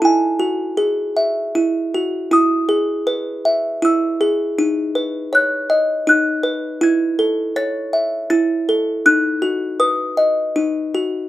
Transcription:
\new Staff \with { instrumentName = "Music box" } { \time 3/4 \key e \major \tempo 4 = 80 << { gis''2~ gis''8 r8 | dis'''2 e'''4~ | e'''4 fis'''4 fis'''4 | gis'''4 a'''4 a'''4 |
fis'''4 dis'''4. r8 | } \\ { e'8 fis'8 gis'8 e''8 e'8 fis'8 | e'8 gis'8 b'8 e''8 e'8 gis'8 | dis'8 b'8 cis''8 dis''8 dis'8 b'8 | e'8 a'8 cis''8 e''8 e'8 a'8 |
dis'8 fis'8 b'8 dis''8 dis'8 fis'8 | } >> }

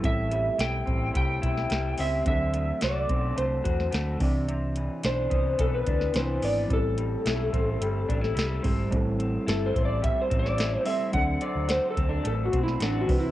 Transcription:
<<
  \new Staff \with { instrumentName = "Electric slide guitar" } { \time 4/4 \key a \minor \tempo 4 = 108 e''4 g''4 g''4. e''8 | e''4 d''4 c''4 r4 | r4 c''4 a'16 b'8. c''8 d''8 | a'2.~ a'8 r8 |
r4 \tuplet 3/2 { a'8 c''8 d''8 e''8 c''8 d''8~ } d''8 e''8 | fis''8 d''8 \tuplet 3/2 { c''8 a'8 d'8 a'8 fis'8 e'8 d'8 fis'8 e'8 } | }
  \new Staff \with { instrumentName = "Reed electric piano" } { \time 4/4 \key a \minor <g c' e' a'>1 | <f fis c' d' a'>2.~ <f fis c' d' a'>8 <e c' d' d''>8~ | <e c' d' d''>2. <e c' d' b'>4 | <g c' e' g' a'>2.~ <g c' e' g' a'>8 <g c' e' g'>8 |
<g c' e' a'>2.~ <g c' e' a'>8 <g c' e' a'>8 | <fis c' d' a'>2.~ <fis c' d' a'>8 <e c' d' b'>8 | }
  \new Staff \with { instrumentName = "Clean electric guitar" } { \time 4/4 \key a \minor a,8 g8 e'8 c'8 g8 e'8 g8 c'8 | d8 a8 fis'8 c'8 a8 fis'8 a8 c8 | c8 e8 d'8 b8 e8 d'8 e8 b8 | a,8 g8 e'8 c'8 g8 d'16 e'16 g8 c'8 |
a,8 c'8 e'8 c'8 g8 c'8 e'8 c'8 | d8 c'8 fis'8 c'8 a8 c'8 fis'8 c8 | }
  \new Staff \with { instrumentName = "Picked electric bass" } { \clef bass \time 4/4 \key a \minor a,,4 b,,8 a,,8 c,8 b,,8 c,8 cis,8 | d,4 c,8 b,,8 c,8 e,8 d,8 c,8~ | c,4 b,,8 c,8 b,,8 d,8 c,8 gis,,8 | a,,4 b,,8 a,,8 g,,8 a,,8 c,8 gis,,8 |
a,,4 g,,8 a,,8. r16 a,,4 r8 | d,8 r16 d,8 r16 d,8 a,,8 b,,8 a,,8 c,8 | }
  \new DrumStaff \with { instrumentName = "Drums" } \drummode { \time 4/4 <hh bd>8 hh8 <hh sn>8 <hh bd>8 <hh bd>8 <hh bd>16 sn16 <hh sn>8 hho8 | <hh bd>8 hh8 <hh sn>8 <hh bd>8 hh8 <hh bd>16 sn16 <hh sn>8 <hho bd>8 | hh8 hh8 <hh sn>8 <hh bd>8 <hh bd>8 <hh bd>16 sn16 <hh sn>8 hho8 | <hh bd>8 hh8 <hh sn>8 <hh bd>8 hh8 <hh bd>16 sn16 <hh sn>8 <hho bd>8 |
<hh bd>8 hh8 <hh sn>8 <hh bd>8 <hh bd>8 <hh bd>16 sn16 <hh sn>8 hho8 | <hh bd>8 hh8 <hh sn>8 <hh bd>8 hh8 <hh bd>16 sn16 <hh sn>8 <hho bd>8 | }
>>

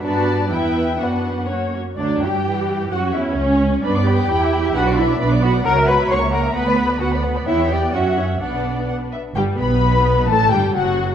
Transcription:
<<
  \new Staff \with { instrumentName = "Violin section" } { \time 2/4 \key b \minor \tempo 4 = 130 a''4 g''4 | fis''4 r4 | d''8 g''4. | fis''8 e''8 cis''4 |
d''8 g''4. | fis''8 e''8 d''8 fis''8 | ais''8 b''8 cis'''8 ais''8 | b''4 fis''8 r8 |
e''8 g''8 fis''8 cis''8 | b'4. r8 | \key g \major g''8 b''4. | a''8 g''8 fis''4 | }
  \new Staff \with { instrumentName = "Violin section" } { \time 2/4 \key b \minor << { <b' d''>4 <b' e''>4 | <fis' b'>4 <fis' cis''>8 r8 | d'8 g'4. | fis'8 e'8 cis'4 |
b''16 d'''16 b''16 d'''16 b''16 g''16 b''16 g''16 | b''16 d'''16 b''16 d'''16 b''16 d'''16 b''16 d'''16 | fis''16 ais''16 fis''16 ais''16 fis''16 ais''16 fis''16 ais''16 | fis''16 b''16 fis''16 b''16 fis''16 b''16 fis''16 b''16 |
g''4 fis''4 | fis''4 fis''8 e''8 | \key g \major g'8 b'4. | a'8 g'8 fis'4 | } \\ { r2 | r2 | r2 | r2 |
b'16 d''16 b'16 d''16 g''16 e''16 g''16 e''16 | b'16 d''16 b'16 d''16 b'16 d''16 b'16 d''16 | cis''16 e''16 cis''16 e''16 cis''16 e''16 cis''16 e''16 | b'16 d''16 b'16 d''16 b'16 d''16 b'16 d''16 |
cis''8 d''8 e''4 | d''4 r4 | r2 | r2 | } >> }
  \new Staff \with { instrumentName = "Cello section" } { \time 2/4 \key b \minor d'4 e'4 | d'4 cis'8 fis'8 | d'8 g'4. | fis'8 e'8 cis'4 |
d'8 g'4. | fis'8 e'8 d'8 fis'8 | ais'8 b'8 cis''8 ais'8 | b'4 fis'8 r8 |
e'8 g'8 fis'8 cis'8 | b4. r8 | \key g \major g,8 b,4. | a,8 g,8 fis,4 | }
  \new Staff \with { instrumentName = "Viola section" } { \time 2/4 \key b \minor <b fis'>4 <b e'>4 | <b d'>4 <ais cis'>8 r8 | fis4 e4 | cis'2 |
b4 e'4 | d'4 b4 | fis4 ais4 | b4 b4~ |
b4 cis'4 | d'4. r8 | \key g \major g8 b4. | a8 g8 fis4 | }
  \new Staff \with { instrumentName = "Double bass section" } { \clef bass \time 2/4 \key b \minor g,4 e,4 | fis,4. r8 | d,8 g,4. | fis,8 e,8 cis,4 |
g,4 e,4 | b,,4 b,,4 | cis,4 cis,4 | d,4 d,4 |
e,4 fis,4 | b,,4. r8 | \key g \major g,,8 b,,4. | a,,8 g,,8 fis,,4 | }
>>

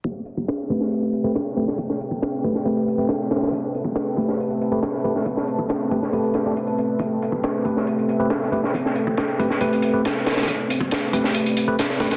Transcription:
<<
  \new Staff \with { instrumentName = "Ambient pad" } { \time 4/4 \key a \minor \tempo 4 = 138 << { g''1~ | g''1 | a''1~ | a''1 |
g''1~ | g''1 | d''1 | } \\ { <a c' a' b'>1~ | <a c' a' b'>1~ | <a c' a' b'>1~ | <a c' a' b'>1~ |
<a c' a' b'>1~ | <a c' a' b'>1~ | <a c' a' b'>1 | } >> }
  \new Staff \with { instrumentName = "Tine electric piano" } { \time 4/4 \key a \minor r4. <a c' g' b'>4~ <a c' g' b'>16 <a c' g' b'>16 r8 <a c' g' b'>16 r16 | r4. <a c' g' b'>16 r16 <a c' g' b'>8. <a c' g' b'>16 r4 | r4. <a c' g' b'>4~ <a c' g' b'>16 <a c' g' b'>16 r8 <a c' g' b'>16 r16 | r4. <a c' g' b'>16 r16 <a c' g' b'>8. <a c' g' d''>16 r4 |
r4. <a c' g' b'>4~ <a c' g' b'>16 <a c' g' b'>16 r8 <a c' g' b'>16 r16 | r4. <a c' g' b'>16 r16 <a c' g' b'>8. <a c' g' b'>16 r4 | r4. <a c' g' b'>4~ <a c' g' b'>16 <a c' g' b'>16 r8 <a c' g' b'>16 r16 | }
  \new DrumStaff \with { instrumentName = "Drums" } \drummode { \time 4/4 <hh bd>8 hh16 bd16 <hh sn>8 <hh bd>16 sn16 hh16 hh16 hh8 <hh sn>16 sn16 hh16 sn16 | <hh bd>16 sn16 hh16 bd16 <hh sn>8 <hh bd>16 sn16 hh16 hh16 hh8 <hh sn>16 sn16 <hh sn>32 <hh sn>32 <hh sn>32 <hh sn>32 | <hh bd>8 hh16 bd16 <hh sn>8 <hh bd>16 sn16 hh16 hh16 hh8 <hh sn>16 sn16 hh16 sn16 | <hh bd>16 sn16 hh16 bd16 <hh sn>8 <hh bd>16 sn16 hh16 hh16 <hh sn>8 hh16 hh16 hh8 |
<hh bd>8 hh16 bd16 <hh sn>8 <hh bd>16 sn16 hh16 hh16 hh8 <hh sn>16 sn16 hh16 sn16 | <hh bd>16 sn16 hh16 bd16 <hh sn>8 <hh bd>16 sn16 hh16 hh16 hh8 <hh sn>16 sn16 <hh sn>32 <hh sn>32 <hh sn>32 <hh sn>32 | <hh bd>8 hh16 bd16 <hh sn>8 <hh bd>16 sn16 hh16 hh16 hh8 <hh sn>16 sn16 <hh sn>16 <hh sn>16 | }
>>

